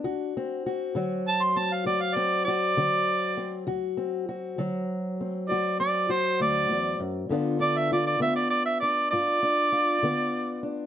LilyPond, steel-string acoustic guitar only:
\new Staff \with { instrumentName = "Steel-string acoustic guitar" } { \time 12/8 \key d \mixolydian \tempo 4. = 66 << { fis'8 c'8 fis'8 fis4 c'8 fis'8 c'8 fis'8 fis4 c'8 | fis'8 c'8 fis'8 fis4 c'8 fis'8 c'8 fis'2 | <d b d' f'>8 d'8 f'8 b4 d'8 f'8 d'8 f'8 b4 d'8 | } \\ { d,4 r8 d4 r8 d,4 r8 d4 r8 | d,4 r8 d4 r8 d,4 r8 d,8 e,8 fis,8 | g,4 r8 d4 r8 g,4 r8 d4 r8 | } >> }